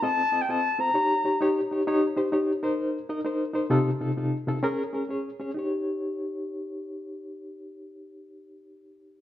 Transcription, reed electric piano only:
X:1
M:4/4
L:1/8
Q:"Swing" 1/4=130
K:Ebmix
V:1 name="Reed electric piano"
[CF=Ae] [CFAe] [CFAe] [CFAc] [EGd] [EGd] [EGd] [EGd] | [EGd] [EGc] [EGd] [EBc]2 [EBe] [EBc] [EBc] | [C,EF=A] [C,EFA] [C,EFA] [C,EFA] [D_AB] [DAB] [DAd] [DAd] | [EGd]8- |
[EGd]8 |]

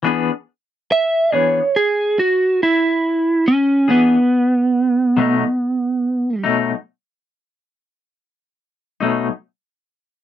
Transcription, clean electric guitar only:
X:1
M:12/8
L:1/8
Q:3/8=47
K:E
V:1 name="Clean electric guitar"
[E,B,=DG] z2 [E,B,DG] z4 z [E,B,DG] z2 | [B,,F,A,D] z2 [B,,F,A,D] z4 z [B,,F,A,D] z2 |]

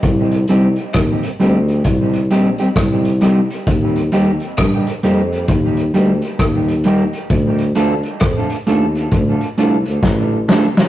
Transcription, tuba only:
X:1
M:4/4
L:1/16
Q:"Swing 16ths" 1/4=66
K:Cdor
V:1 name="Tuba" clef=bass
C,,2 C,, z E,, z D,,2 C,,2 B,,, z C,,3 z | E,,2 E,, z G,, z F,,2 E,,2 D,, z E,,3 z | D,,2 D,, z F,, z E,,2 D,, z C,, D,, A,,,2 z2 |]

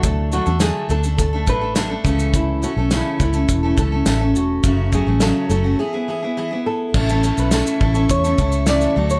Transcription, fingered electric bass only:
X:1
M:4/4
L:1/16
Q:1/4=104
K:A
V:1 name="Fingered electric bass" clef=bass
D,,3 E,,2 z D,,4 A,,,4 C,,2- | C,,3 B,,,2 z C,,2 E,,,2 C,,2 A,,,2 E,,,2 | F,,,3 A,,,2 z F,,,2 z8 | A,,,3 B,,,2 z A,,,2 E,,2 C,,4 D,,2 |]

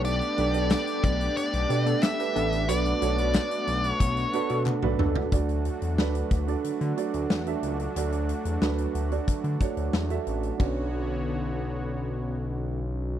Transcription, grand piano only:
X:1
M:4/4
L:1/16
Q:1/4=91
K:D
V:1 name="Grand piano"
[DGAB] z [DGAB] [DGAd]4- [DGAd] z2 [DGAd]2 z [DGAB]2 z | [DFAB] z [DFAc] [DFAB]4- [DFAB] z2 [DFAB]2 z [DFAB]2 z | [DFAd]3 z [DFAB]2 z [DFAd]2 z [DFAd]2 z [DFAe]2 z | [DFAd]3 z [DFAB]2 z [DFAd]2 z [DFAc]2 z [DFAe]2 z |
[DFBc]16 |]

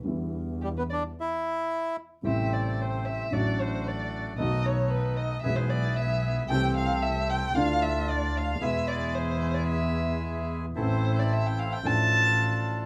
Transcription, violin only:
X:1
M:4/4
L:1/16
Q:1/4=112
K:Em
V:1 name="Violin"
z4 G B d2 z8 | [K:Am] e2 d2 c2 e2 d2 c2 d3 z | ^d2 ^c2 B2 d2 e =c =d2 e3 z | g2 f2 e2 g2 f2 e2 d2 f2 |
e2 d2 c3 d e6 z2 | c3 d e g f g a6 z2 |]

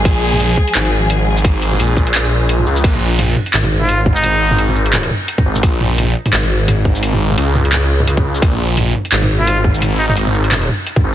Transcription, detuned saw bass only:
X:1
M:4/4
L:1/8
Q:"Swing 16ths" 1/4=172
K:Bbm
V:1 name="Detuned saw bass" clef=bass
B,,,3 z A,,,4- | A,,,2 B,,,2 B,,,3 D,, | B,,,3 z A,,,4- | A,,,2 A,,,3 z2 A,,, |
B,,,3 z A,,,4- | A,,,2 D,,4 D,,2 | B,,,3 z A,,,4- | A,,,2 A,,,3 z2 A,,, |]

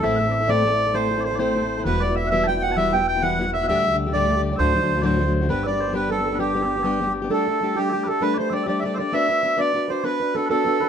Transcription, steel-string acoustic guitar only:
X:1
M:12/8
L:1/16
Q:3/8=132
K:G
V:1 name="Steel-string acoustic guitar"
[A,,A,CEA]2 [A,CEA] [CEA]2 [CEA] [A,,A,CEA]2 [A,CEA] [CEA]2 [CEA] [A,,A,CEA]2 [A,CEA] [CEA]2 [CEA] [A,,A,CEA]2 [A,CEA] [CEA]2 [CEA] | [E,G,B,EF]2 [G,B,EF] [B,EF]2 [B,EF] [E,G,B,EF]2 [G,B,EF] [B,EF]2 [B,EF] [E,G,B,EF]2 [G,B,EF] [B,EF]2 [B,EF] [E,G,B,EF]2 [G,B,EF] [B,F]2 [B,EF] | [D,,A,,D,G,A,G]2 [D,G,A,G] [D,G,A,G]2 [D,G,A,G] [D,,A,,D,G,A,G]2 [D,G,A,G] [D,G,A,G]2 [D,G,A,G] [D,,A,,F,A,DF]2 [F,A,DF] [F,A,DF]2 [F,A,DF] [D,,A,,F,A,DF]2 [F,A,DF] [F,A,DF]2 [F,A,DF] | [G,B,DG]2 [G,B,DG] [B,DG]2 [B,DG] [G,B,DG]2 [G,B,DG] [B,DG]2 [B,DG] [G,B,DG]2 [G,B,DG] [B,DG]2 [B,DG] [G,B,DG]2 [G,B,DG] [B,DG]2 [B,DG] |
[G,A,DG]2 [A,DG]2 [G,A,DG]2 [G,A,DG]2 [G,A,DG]2 [A,DG]2 [G,A,DG]2 [A,DG]2 [G,A,DG]2 [G,A,DG]2 [G,A,DG]2 [A,DG]2 | [B,DFB]2 B2 [B,DFB]2 [B,DFB]2 [B,DFB]2 [DFB]2 [B,DFB]2 [DFB]2 [B,DFB]2 [B,DFB]2 [B,DFB]2 [DFB]2 |]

